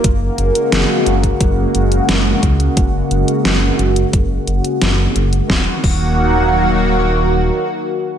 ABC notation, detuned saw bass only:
X:1
M:4/4
L:1/8
Q:1/4=88
K:Ebm
V:1 name="Detuned saw bass" clef=bass
G,,, G,,, G,,, G,,, G,,, G,,, G,,, D,, | G,,, G,,, G,,, G,,, G,,, G,,, G,,, G,,, | E,,, E,,,4- E,,, z2 |]